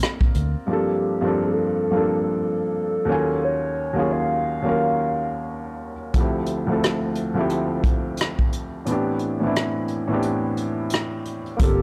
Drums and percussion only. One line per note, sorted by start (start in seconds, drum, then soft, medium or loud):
0.03 cross-stick loud
0.21 kick medium
0.34 closed hi-hat medium
6.14 kick medium
6.14 closed hi-hat medium
6.46 closed hi-hat medium
6.83 cross-stick loud
6.83 closed hi-hat medium
7.15 closed hi-hat medium
7.50 closed hi-hat medium
7.84 kick medium
7.84 closed hi-hat medium
8.17 closed hi-hat medium
8.21 cross-stick loud
8.39 kick medium
8.52 closed hi-hat medium
8.86 closed hi-hat medium
9.19 closed hi-hat medium
9.56 cross-stick loud
9.56 closed hi-hat medium
9.88 closed hi-hat medium
10.22 closed hi-hat medium
10.57 closed hi-hat medium
10.90 closed hi-hat medium
10.94 cross-stick loud
11.25 closed hi-hat medium
11.46 closed hi-hat soft
11.59 kick loud
11.59 closed hi-hat loud